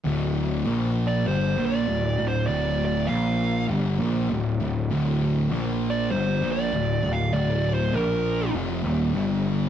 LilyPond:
<<
  \new Staff \with { instrumentName = "Lead electric guitar" } { \time 4/4 \key d \minor \tempo 4 = 99 r4 \tuplet 3/2 { r4 d''8 c''4 d''8~ d''4 c''8 } | \tuplet 3/2 { d''4 d''8 } f''4 r2 | r4 \tuplet 3/2 { r4 d''8 c''4 d''8~ d''4 f''8 } | \tuplet 3/2 { d''4 c''8 } bes'4 r2 | }
  \new Staff \with { instrumentName = "Distorted electric guitar" } { \clef bass \time 4/4 \key d \minor <d, a, d>4 <bes, f bes>4 <g, d g>8 <bes, f bes>8 <d, a,>8 <d, a,>8 | <d, a, d>4 <bes, f bes>4 <g, d g>8 <bes, f bes>8 <d, a,>8 <d, a,>8 | <d, a, d>4 <bes, f bes>4 <g, d g>8 <bes, f bes>8 <d, a,>8 <d, a,>8 | <d, a, d>4 <bes, f bes>4 <f, c f>8 <ees, bes, ees>8 <g, d g>4 | }
  \new Staff \with { instrumentName = "Distorted electric guitar" } { \clef bass \time 4/4 \key d \minor <d, a, d>4 <bes, f bes>4 <g, d g>8 <bes, f bes>8 <d, a,>8 <d, a,>8 | <d, a, d>4 <bes, f bes>4 <g, d g>8 <bes, f bes>8 <d, a,>8 <d, a,>8 | <d, a, d>4 <bes, f bes>4 <g, d g>8 <bes, f bes>8 <d, a,>8 <d, a,>8 | <d, a, d>4 <bes, f bes>4 <f, c f>8 <ees, bes, ees>8 <g, d g>4 | }
  \new Staff \with { instrumentName = "Picked electric bass" } { \clef bass \time 4/4 \key d \minor d,,4 bes,,4 g,,8 bes,,8 d,,8 d,,8 | d,,4 bes,,4 g,,8 bes,,8 d,,8 d,,8 | d,,4 bes,,4 g,,8 bes,,8 d,,8 d,,8 | d,,4 bes,,4 f,,8 ees,,8 g,,4 | }
>>